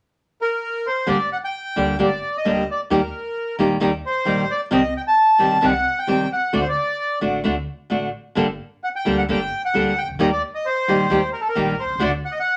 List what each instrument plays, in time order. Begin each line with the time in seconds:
0.41 bandoneon A#4
0.87 bandoneon C5
1.06 upright bass G1, nylon-string guitar D3 G3 A#3 D4 G4, bandoneon D5
1.33 bandoneon F#5
1.44 bandoneon G5
1.76 upright bass D2, nylon-string guitar D3 G3 A#3 D4 G4
1.99 upright bass G1, nylon-string guitar D3 G3 A#3 D4 G4
2.03 bandoneon D5
2.37 bandoneon D#5
2.45 upright bass D2, nylon-string guitar D3 G3 A#3 D4 G4
2.71 bandoneon D5
2.90 upright bass D#2, nylon-string guitar D#3 G3 A#3 D#4 G4, bandoneon A#4
3.59 upright bass A#1, nylon-string guitar D#3 G3 A#3 D#4 G4
3.80 upright bass D#2, nylon-string guitar D#3 G3 A#3 D#4 G4
4.06 bandoneon C5
4.25 upright bass A#1, nylon-string guitar D#3 G3 A#3 D#4 G4
4.51 bandoneon D5
4.71 upright bass C2, nylon-string guitar C3 D#3 G3 C4 G4, bandoneon D#5
4.97 bandoneon G5
5.08 bandoneon A5
5.38 upright bass G1, nylon-string guitar C3 D#3 G3 C4 G4
5.61 upright bass C2, nylon-string guitar C3 D#3 G3 C4 G4, bandoneon F#5
5.99 bandoneon G5
6.07 upright bass G1, nylon-string guitar C3 D#3 G3 C4 G4
6.33 bandoneon F#5
6.53 upright bass D2, nylon-string guitar D3 A3 D4 F#4, bandoneon D5
6.60 bandoneon C5
6.69 bandoneon D5
7.21 upright bass A1, nylon-string guitar D3 A3 D4 F#4
7.44 upright bass D2, nylon-string guitar D3 A3 D4 F#4
7.90 upright bass A1, nylon-string guitar D3 A3 D4 F#4
8.35 upright bass G1, nylon-string guitar D3 G3 A#3 D4 A4
8.84 bandoneon F#5
8.96 bandoneon G5
9.05 upright bass D2, nylon-string guitar D3 G3 A#3 D4 A4
9.18 bandoneon F#5
9.29 upright bass G1, nylon-string guitar D3 G3 A#3 D4 A4, bandoneon G5
9.65 bandoneon F#5
9.74 upright bass D2, nylon-string guitar D3 G3 A#3 D4 A4
9.98 bandoneon G5
10.03 upright bass C2
10.08 upright bass C#2
10.14 upright bass D2
10.19 upright bass D#2, nylon-string guitar D#3 G3 A#3 D#4 G4, bandoneon D#5
10.32 bandoneon D5
10.55 bandoneon D#5
10.66 bandoneon C5
10.88 upright bass A#1, nylon-string guitar D#3 G3 A#3 D#4 G4
11.10 upright bass D#2, nylon-string guitar D#3 G3 A#3 D#4 G4
11.33 bandoneon A#4
11.41 bandoneon A4
11.49 bandoneon A#4
11.55 upright bass A#1, nylon-string guitar D#3 G3 A#3 D#4 G4
11.80 bandoneon C5
11.84 upright bass B1
11.90 upright bass C2
11.96 upright bass C#2, nylon-string guitar D3
12.00 upright bass D2, nylon-string guitar A3 D4 F#4, bandoneon D5
12.25 bandoneon F#5
12.32 bandoneon D#5
12.40 bandoneon F#5